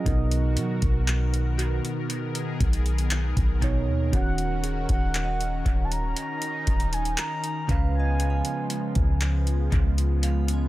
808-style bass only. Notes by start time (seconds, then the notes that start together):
0.06 B1
0.57 F#3
0.82 B1
2.60 B1
3.37 B1
3.87 D#2
4.13 D#1
4.89 D#1
5.66 D#1
6.67 D#1
7.69 C#2
8.96 C#2
9.72 C#2